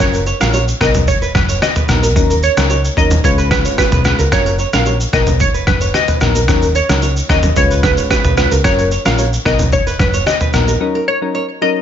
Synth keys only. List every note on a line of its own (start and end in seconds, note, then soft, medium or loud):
0.00 0.18 F#3 medium
0.00 0.18 C#4 medium
0.00 0.18 F4 medium
0.00 0.18 A#4 loud
0.40 0.58 F#3 medium
0.40 0.58 C#4 medium
0.40 0.59 F4 medium
0.40 0.59 A#4 medium
0.80 0.99 F#3 medium
0.80 0.99 B3 medium
0.80 0.99 D#4 medium
0.80 0.99 A#4 medium
1.89 2.07 F#3 medium
1.89 2.07 B3 medium
1.89 2.07 D#4 medium
1.89 2.08 A#4 medium
2.16 2.34 F#3 medium
2.16 2.34 C#4 medium
2.16 2.35 D#4 medium
2.16 2.35 A#4 loud
2.57 2.75 F#3 medium
2.57 2.75 C#4 medium
2.57 2.75 D#4 medium
2.57 2.75 A#4 medium
2.97 3.15 F#3 medium
2.97 3.15 C#4 medium
2.97 3.15 D#4 medium
2.97 3.16 A#4 medium
3.24 3.99 G#3 medium
3.24 3.99 C#4 medium
3.24 3.99 F4 medium
3.24 3.99 B4 medium
4.05 4.23 G#3 medium
4.05 4.23 C#4 medium
4.05 4.23 F4 medium
4.05 4.24 B4 medium
4.32 4.50 F#3 medium
4.32 4.50 C#4 medium
4.32 4.51 F4 medium
4.32 4.51 A#4 loud
4.73 4.91 F#3 medium
4.73 4.91 C#4 medium
4.73 4.91 F4 medium
4.73 4.91 A#4 medium
5.13 5.31 F#3 medium
5.13 5.32 B3 medium
5.13 5.32 D#4 medium
5.13 5.32 A#4 medium
6.21 6.40 F#3 medium
6.21 6.40 B3 medium
6.21 6.40 D#4 medium
6.21 6.40 A#4 medium
6.48 6.67 F#3 medium
6.48 6.67 C#4 medium
6.48 6.67 D#4 medium
6.48 6.67 A#4 loud
6.89 7.07 F#3 medium
6.89 7.07 C#4 medium
6.89 7.07 D#4 medium
6.89 7.07 A#4 medium
7.29 7.48 F#3 medium
7.29 7.48 C#4 medium
7.29 7.48 D#4 medium
7.29 7.48 A#4 medium
7.56 8.31 G#3 medium
7.56 8.31 C#4 medium
7.56 8.31 F4 medium
7.56 8.31 B4 medium
8.37 8.56 G#3 medium
8.37 8.56 C#4 medium
8.37 8.56 F4 medium
8.37 8.56 B4 medium
8.64 8.83 F#3 medium
8.64 8.83 C#4 medium
8.64 8.83 F4 medium
8.64 8.83 A#4 loud
9.05 9.23 F#3 medium
9.05 9.23 C#4 medium
9.05 9.23 F4 medium
9.05 9.23 A#4 medium
9.45 9.64 F#3 medium
9.45 9.64 B3 medium
9.45 9.64 D#4 medium
9.45 9.64 A#4 medium
10.54 10.72 F#3 medium
10.54 10.72 B3 medium
10.54 10.72 D#4 medium
10.54 10.72 A#4 medium
10.80 10.99 F#3 medium
10.80 10.99 C#4 medium
10.80 10.99 D#4 medium
10.80 10.99 A#4 loud
11.22 11.39 F#3 medium
11.22 11.40 C#4 medium
11.22 11.40 D#4 medium
11.22 11.40 A#4 medium
11.62 11.80 F#3 medium
11.62 11.80 C#4 medium
11.62 11.80 D#4 medium
11.62 11.80 A#4 medium